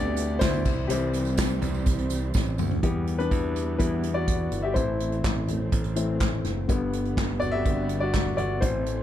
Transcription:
Already playing: D2 D3 G3 B3 F#4 G4 D5 E5
0.17 closed hi-hat, tambourine
0.39 D2 E4 C5, kick, snare, clap, closed hi-hat, tambourine
0.53 floor tom, tambourine
0.65 C2 E3 G3 C4, kick, snare, floor tom, tambourine, crash
0.87 C2 E3 G3 C4 G4, closed hi-hat, tambourine
1.14 closed hi-hat, tambourine
1.25 closed hi-hat, tambourine
1.38 kick, snare, clap, closed hi-hat, tambourine
1.62 C2, closed hi-hat, floor tom, tambourine
1.74 tambourine
1.86 kick, closed hi-hat, tambourine
1.99 closed hi-hat
2.10 closed hi-hat, tambourine
2.34 A1, kick, snare, tambourine
2.46 tambourine
2.58 D2, mid tom, tambourine
2.71 floor tom
2.83 E2 E3 G3 B3 G4, kick, closed hi-hat
3.07 closed hi-hat
3.18 D4 B4, closed hi-hat
3.31 E2, kick, closed hi-hat
3.56 closed hi-hat
3.78 E2 E3 G3 B3 E4 B4, kick, closed hi-hat
4.03 closed hi-hat
4.14 F#4 D5
4.28 kick, closed hi-hat
4.52 G1, closed hi-hat
4.62 G4 E5
4.74 A1 E3 A3 C4 E4 C5, kick, closed hi-hat
5.00 closed hi-hat
5.12 closed hi-hat
5.24 A1, kick, snare, clap, closed hi-hat
5.48 closed hi-hat, floor tom
5.72 A1, kick, closed hi-hat
5.84 closed hi-hat
5.96 E3 A3 C4, closed hi-hat
6.20 kick, snare, clap, closed hi-hat
6.33 floor tom
6.45 F#1, snare, closed hi-hat, floor tom
6.68 G1 D3 G3 B3, kick, closed hi-hat
6.93 closed hi-hat
7.05 closed hi-hat
7.17 G1, kick, snare, clap, closed hi-hat
7.40 F#4 D5, closed hi-hat, floor tom
7.52 G4 E5
7.65 G1 D3 G3 B3, kick, closed hi-hat
7.89 closed hi-hat
8.00 F#4 D5
8.14 kick, snare, clap, closed hi-hat
8.26 floor tom
8.37 G1 F#4 D5, closed hi-hat, floor tom
8.61 A1 E3 A3 C4 E4 C5, kick, closed hi-hat
8.86 closed hi-hat

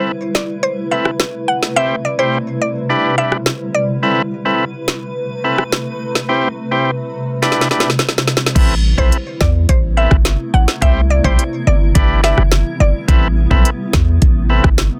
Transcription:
Already playing: C3 A3 C4 E4 A4 B4
0.35 D5, snare
0.63 C5
0.91 C4 E4 A4 B4 E5
1.05 cross-stick
1.20 snare
1.48 F#5
1.63 snare
1.76 G3 C4 E4 G4 C5 E5
2.05 D5
2.19 C4 E4 G4 C5
2.62 D5
2.89 D4 E4 G4 B4
3.18 D4 E4 G4 B4 E5
3.32 cross-stick
3.46 snare
3.74 D5
4.03 C3 A3 C4 E4 A4 B4
4.45 C4 E4 A4 B4
4.88 snare
5.44 C4 E4 A4 B4
5.58 cross-stick
5.72 snare
6.15 snare
6.29 G3 C4 E4 G4 C5
6.71 C4 E4 G4 C5
7.42 D4 E4 G4 B4, snare
7.52 snare
7.61 snare
7.71 D4 E4 G4 B4, snare
7.80 snare
7.90 snare
7.99 snare
8.09 snare
8.18 snare
8.28 snare
8.37 snare
8.46 snare
8.55 A1 C3 A3 B3 C4 E4 A4 B4, kick, closed hi-hat, crash
8.98 B1 C4 E4 A4 B4 C5, kick
9.12 closed hi-hat
9.41 E2 D5, kick, snare
9.69 A1 C5, kick, closed hi-hat
9.97 C4 E4 A4 B4 E5
10.11 G1, kick, cross-stick
10.25 snare, closed hi-hat
10.54 A1 F#5
10.68 snare
10.81 C2 G3 C4 E4 G4 C5 E5, kick, closed hi-hat
11.10 D5
11.24 B1 C4 E4 G4 C5, kick
11.39 closed hi-hat
11.67 G1 D5
11.95 G1 B3 D4 E4 G4 B4, kick, closed hi-hat
12.23 D4 E4 G4 B4 E5, snare
12.38 F#1, cross-stick
12.52 snare, closed hi-hat
12.80 G1 D5
13.08 A1 C3 A3 C4 E4 A4 B4, kick, closed hi-hat
13.51 B1 C4 E4 A4 B4, kick
13.65 closed hi-hat
13.93 E2, kick, snare
14.22 A1, kick, closed hi-hat
14.50 C4 E4 A4 B4
14.64 G1, kick, cross-stick
14.78 snare, closed hi-hat

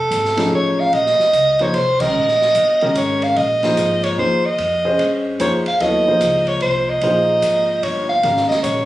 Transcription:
Already playing: A4
0.11 G#1, hi-hat pedal, ride
0.25 snare
0.37 F3 A3 C#4 D#4 G#4, snare, ride
0.51 A1
0.55 C#5
0.80 F5
0.93 A#1 D#5, ride
1.06 snare
1.19 muted upright bass stroke, snare
1.33 C#2, hi-hat pedal, ride
1.59 F3 A#3 D#4 G#4 C5 C#5, ride
1.74 C2 C5, ride
2.00 D#3 G#3 C#4 G4 A#4 D#5, kick, crash
2.15 A#1
2.28 snare
2.42 snare
2.55 G1, hi-hat pedal, ride
2.81 D#3 G#3 C#4 G4 A#4, ride
2.95 G#1 C#5, hi-hat pedal, ride
3.22 F5, ride
3.36 A#1 D#5, ride
3.63 F3 A#3 D#4 G#4 C5, snare, ride
3.76 G#1, hi-hat pedal, ride
4.04 C#5, ride
4.17 D#2 F3 A#3 D#4 G#4 C5
4.46 D#5
4.58 F2, ride
4.85 C#4 G4 G#4 C5 D#5
4.99 G2, ride
5.40 F2 F3 A#3 D#4 G#4 C5 C#5, hi-hat pedal, ride
5.66 F5, ride
5.80 D#2 F#3 B3 E4 A4 C#5 D#5, ride
6.08 F3 A#3 D#4 G#4 C5
6.21 C#2, hi-hat pedal, ride
6.47 C#5, ride
6.61 C2 C5, ride
6.89 D#5
7.01 A#1 F3 A#3 D#4 G#4 C5, ride
7.42 G#1, hi-hat pedal, ride
7.83 G1 C#5, ride
8.09 F5
8.23 G#1 D#3 G#3 C#4 G4 A#4, ride
8.37 snare
8.48 D#5, snare
8.63 A#1 C#5, hi-hat pedal, ride

